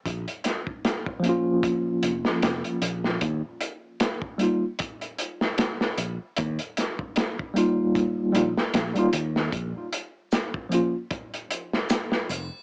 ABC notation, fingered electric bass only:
X:1
M:4/4
L:1/8
Q:"Swing 16ths" 1/4=76
K:Bbdor
V:1 name="Fingered electric bass" clef=bass
B,,, z4 F,,, F,,, B,,, | E,, z6 B,,, | E,, z4 B,,, B,,, E,, | B,,, z6 F,,, |]